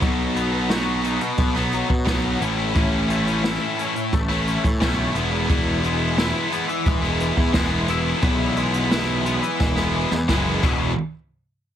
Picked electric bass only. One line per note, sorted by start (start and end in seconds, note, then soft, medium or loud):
0.01 1.18 B1 loud
1.38 1.82 B1 medium
1.90 2.04 B2 medium
2.07 2.36 B1 medium
2.40 3.57 A1 medium
4.13 4.56 A1 loud
4.64 4.79 A2 medium
4.81 5.10 B1 medium
5.15 6.32 E1 loud
6.86 7.30 E1 loud
7.37 7.52 E2 loud
7.54 8.13 E1 loud
8.23 9.40 B1 loud
9.60 10.04 E1 loud
10.12 10.26 E2 medium
10.29 10.60 F#1 medium
10.63 10.95 E1 loud